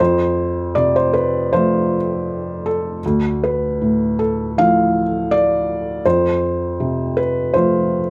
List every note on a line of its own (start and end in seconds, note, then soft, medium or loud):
0.00 2.99 F2 medium
0.00 0.74 C5 medium
0.75 1.97 C3 soft
0.75 0.94 D5 medium
0.96 1.13 C5 medium
1.13 1.51 B4 medium
1.53 3.00 F3 soft
1.53 3.01 A3 soft
1.53 3.00 F4 medium
1.53 2.66 C5 medium
2.66 3.03 A4 medium
3.06 6.02 D2 medium
3.44 4.18 B4 medium
3.81 5.03 A2 soft
4.19 4.57 A4 medium
4.58 6.02 F3 soft
4.58 6.02 A3 soft
4.58 6.02 E4 soft
4.58 5.32 F5 medium
5.31 6.05 D5 medium
6.06 8.10 F2 medium
6.06 7.17 C5 medium
6.80 7.99 C3 soft
7.17 7.54 B4 medium
7.54 8.10 F3 soft
7.54 8.10 A3 soft
7.54 8.10 F4 soft
7.54 8.10 C5 medium